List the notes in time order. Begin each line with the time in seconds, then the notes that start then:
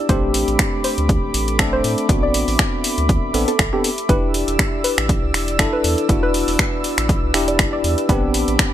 Already playing: E4 G4
0.09 A1 A3 C4 D4 G4 A4 C5 B5 D6, kick, closed hi-hat
0.34 open hi-hat
0.48 A1, closed hi-hat
0.54 E5
0.59 finger snap, kick, closed hi-hat
0.84 C5, open hi-hat
0.98 D2, closed hi-hat
1.09 kick, closed hi-hat
1.23 E1
1.34 A1, open hi-hat
1.48 closed hi-hat
1.59 A3 C4 D4 A4, finger snap, kick, closed hi-hat
1.73 C5
1.84 A2, open hi-hat
1.98 closed hi-hat
2.09 A1 B3 C4 D4 F#4, kick, closed hi-hat
2.23 D5
2.34 open hi-hat
2.48 A1, open hi-hat
2.59 finger snap, kick, closed hi-hat
2.84 open hi-hat
2.98 D2, closed hi-hat
3.09 kick, closed hi-hat
3.23 E1
3.34 A1 B3 C4 D4 A4, open hi-hat
3.48 A4, closed hi-hat
3.59 A1, finger snap, kick, closed hi-hat
3.73 B3 C4 D4 G4 A4
3.84 open hi-hat
3.98 closed hi-hat
4.09 E1 D4 E4 G4 B4 D5 E6, kick, closed hi-hat
4.34 open hi-hat
4.48 E1, closed hi-hat
4.59 B4, finger snap, kick, closed hi-hat
4.84 B4, open hi-hat
4.98 A1, finger snap, closed hi-hat
5.09 kick, closed hi-hat
5.23 B1
5.34 E1, finger snap, open hi-hat
5.48 closed hi-hat
5.59 D4 E4 A4, finger snap, kick, closed hi-hat
5.73 B4
5.84 E2, open hi-hat
5.98 closed hi-hat
6.09 E1 D4 E4 F#4, kick, closed hi-hat
6.23 B4
6.34 open hi-hat
6.48 E1, open hi-hat
6.59 finger snap, kick, closed hi-hat
6.84 open hi-hat
6.98 A1, finger snap, closed hi-hat
7.09 kick, closed hi-hat
7.23 B1
7.34 E1 D4 E4 G4, finger snap, open hi-hat
7.48 D5, closed hi-hat
7.59 finger snap, kick, closed hi-hat
7.73 D5
7.84 E2, open hi-hat
7.98 closed hi-hat
8.09 A1 B3 C4 D4 G4 A4 B4 B5 D6, kick, closed hi-hat
8.34 open hi-hat
8.42 E5
8.48 A1, closed hi-hat
8.59 finger snap, kick, closed hi-hat